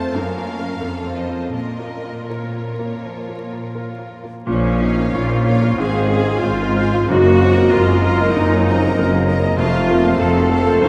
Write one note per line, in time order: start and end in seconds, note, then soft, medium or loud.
0.00 0.12 F2 medium
0.00 0.18 A3 soft
0.00 0.15 F4 soft
0.00 0.18 F4 soft
0.00 0.15 A4 soft
0.00 0.18 A4 soft
0.00 0.15 C5 medium
0.00 0.18 C5 soft
0.00 0.15 A5 medium
0.15 0.79 F#2 medium
0.15 0.80 F#2 soft
0.15 0.81 C#4 medium
0.15 0.81 A#4 soft
0.15 0.81 A#4 medium
0.15 1.16 F5 medium
0.36 0.72 A#3 soft
0.59 0.79 C#4 soft
0.59 0.79 A#4 soft
0.81 1.52 F2 soft
0.81 1.54 F4 soft
0.81 1.16 A4 soft
0.81 1.54 A4 soft
1.05 1.44 C4 soft
1.16 1.54 C5 soft
1.16 1.52 D#5 soft
1.29 1.52 F4 soft
1.29 1.52 A4 soft
1.53 2.99 A#2 soft
1.53 4.26 A#2 soft
1.53 2.28 F4 soft
1.53 4.07 A#4 soft
1.53 2.28 A#4 soft
1.53 2.27 D#5 soft
1.79 2.19 A#3 soft
2.05 2.44 F4 soft
2.29 4.23 F4 soft
2.29 4.22 A#4 soft
2.29 2.69 A#4 soft
2.29 4.12 C#5 soft
2.54 2.93 F4 soft
2.79 3.18 A#3 soft
3.05 3.43 F3 soft
3.29 3.67 A#3 soft
3.53 3.90 F4 soft
3.75 4.14 A#4 soft
3.99 4.38 F4 soft
4.24 4.47 A#3 soft
4.47 5.06 A#1 medium
4.47 5.74 A#2 medium
4.47 5.06 A#2 medium
4.47 5.18 F3 medium
4.47 5.81 A#3 medium
4.47 4.70 C#4 medium
4.47 5.10 C#4 medium
4.47 4.70 F4 medium
4.47 5.81 C#5 medium
4.47 7.04 F5 medium
4.65 4.91 C#4 medium
4.80 4.98 D#4 soft
4.80 5.44 C#5 medium
4.80 5.44 F5 soft
4.80 5.45 F5 soft
4.98 5.24 C#4 soft
5.14 5.70 A#1 medium
5.14 5.71 A#1 medium
5.14 5.71 A#2 medium
5.14 5.80 A#3 medium
5.14 5.78 F4 medium
5.14 5.40 C#5 medium
5.29 5.45 C5 soft
5.45 5.77 C#5 medium
5.45 5.72 C#5 medium
5.45 5.77 F5 medium
5.45 5.78 F5 medium
5.62 5.78 A#4 medium
5.77 6.36 G#1 medium
5.77 7.04 G#2 medium
5.77 6.36 G#2 medium
5.77 7.09 G#3 medium
5.77 6.00 C4 medium
5.77 6.47 C4 medium
5.77 6.00 F4 medium
5.77 6.44 G#4 medium
5.77 6.10 C5 medium
5.77 7.07 C5 medium
5.77 6.09 F5 medium
5.77 6.10 G#5 medium
5.94 6.20 C4 medium
6.10 6.27 C#4 soft
6.10 6.75 C5 medium
6.10 6.75 F5 medium
6.10 6.75 G#5 medium
6.27 6.53 C4 medium
6.44 7.01 G#1 medium
6.44 7.01 G#2 medium
6.44 7.08 G#3 medium
6.44 7.09 F4 medium
6.44 6.70 C5 medium
6.62 6.77 A#4 medium
6.76 7.09 C5 medium
6.76 7.03 C5 medium
6.76 7.08 F5 soft
6.76 7.08 G#5 medium
6.94 7.09 F4 medium
7.08 7.64 F#1 medium
7.08 7.65 F#2 medium
7.08 8.32 F#2 medium
7.08 7.73 A#3 medium
7.08 7.31 A#3 medium
7.08 9.60 A#3 medium
7.08 7.31 D#4 medium
7.08 7.71 F#4 loud
7.08 9.53 A#4 medium
7.08 9.59 D#5 medium
7.27 7.51 A#3 medium
7.40 7.57 C4 medium
7.40 8.02 A#4 medium
7.40 8.02 D#5 medium
7.40 8.02 A#5 medium
7.58 7.82 A#3 soft
7.71 8.27 F#1 medium
7.71 8.27 F#2 medium
7.71 8.36 G#3 medium
7.71 8.35 F4 loud
7.71 7.97 A#4 medium
7.88 8.03 G#4 medium
8.04 8.65 A#4 medium
8.04 8.29 A#4 medium
8.04 8.65 D#5 medium
8.04 8.65 A#5 medium
8.20 8.45 D#5 medium
8.34 8.89 F#1 medium
8.34 8.89 F#2 medium
8.34 9.54 F#2 medium
8.34 9.26 F#3 medium
8.34 8.57 A#3 medium
8.34 9.26 D#4 medium
8.34 8.57 D#4 medium
8.53 8.76 A#3 medium
8.67 8.83 C4 medium
8.67 9.26 A#4 medium
8.67 9.25 D#5 medium
8.67 9.26 A#5 medium
8.84 9.07 A#3 medium
8.96 9.50 F#1 medium
8.96 9.50 F#2 medium
8.96 9.22 A#4 medium
9.14 9.28 G#4 medium
9.27 9.56 A#4 medium
9.27 9.52 A#4 medium
9.27 9.56 D#5 medium
9.27 9.57 A#5 medium
9.44 9.58 D#5 medium
9.56 10.12 F1 medium
9.56 10.12 F2 medium
9.56 10.79 F2 medium
9.56 10.20 A3 medium
9.56 10.56 A3 medium
9.56 10.17 A3 medium
9.56 10.15 F4 loud
9.56 10.17 F4 medium
9.56 9.87 C5 medium
9.56 10.53 C5 medium
9.56 9.87 F5 medium
9.56 10.89 F5 medium
9.56 9.88 A5 medium
9.74 9.98 A3 medium
9.88 10.05 A#3 medium
9.88 10.50 C5 medium
9.88 10.49 F5 medium
9.88 10.50 A5 medium
10.05 10.29 A3 medium
10.19 10.75 F1 medium
10.19 10.75 F2 medium
10.19 10.82 A3 medium
10.19 10.82 C4 medium
10.19 10.82 F4 medium
10.19 10.45 A4 medium
10.19 10.81 A4 loud
10.35 10.51 F#4 medium
10.51 10.76 A4 medium
10.51 10.82 C5 medium
10.51 10.82 F5 medium
10.51 10.83 A5 medium
10.66 10.82 C5 medium
10.81 10.89 F#1 medium
10.81 10.89 F#2 medium
10.81 10.89 A#3 medium
10.81 10.89 D#4 loud
10.81 10.89 F4 medium
10.81 10.89 A#4 medium
10.81 10.89 C5 loud
10.81 10.89 C#5 medium
10.81 10.89 F5 medium
10.81 10.89 A#5 medium